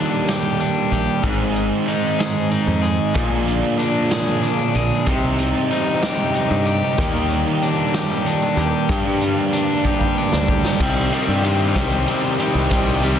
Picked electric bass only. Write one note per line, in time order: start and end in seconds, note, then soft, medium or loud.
0.92 1.07 A#1 medium
1.23 1.38 G#1 loud
1.40 1.70 G#1 medium
2.67 2.97 F2 medium
3.15 3.30 A#1 loud
3.32 3.62 A#1 medium
4.75 4.90 A#1 medium
5.07 5.22 C2 loud
5.23 5.53 C2 medium
6.51 6.80 G2 medium
6.98 7.13 D#2 loud
7.14 7.44 D#2 medium
8.57 8.72 D#2 loud
8.89 9.04 G2 loud
9.05 9.35 G2 medium
10.33 10.63 D2 medium
10.80 11.10 C2 medium
11.28 11.72 G2 medium
11.76 12.05 C2 medium
12.55 12.70 C2 loud
12.71 13.15 C2 loud